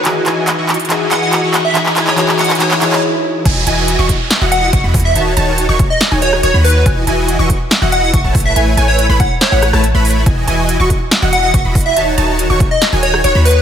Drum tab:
CC |--------------------------------|--------------------------------|x-------------------------------|--------------------------------|
HH |x---x---x---xxxxx---x---x---x---|x---x---x---xxxxx---x-----------|x---x---x---x---x---x---x---ox--|x---x---x---x---x---x---x---ox--|
CP |x---x---x---x---x---x---x---x---|x-x-x-x-x-x-x-x-x-x-x-x---------|--------------------------------|--------------------------------|
SD |--------------------------------|--------------------------------|----------------o---------------|----------------o-----r---------|
BD |--------------------------------|--------------------------------|o-----------o-----------o---o---|------------o-------------------|

CC |--------------------------------|--------------------------------|--------------------------------|--------------------------------|
HH |x---x---x---x---x---x---x---ox--|x---x---x---x---x---x---x---ox--|x---x---x---x---x---x---x---ox--|x---x---x---x---x---x---x---ox--|
CP |--------------------------------|--------------------------------|--------------------------------|--------------------------------|
SD |----------------o---------------|----------------o---r-r---------|----------------o---------------|----------------o-----r---------|
BD |o-----------o-----------o---o---|------------o-------------------|o-----------o-----------o---o---|------------o-------------------|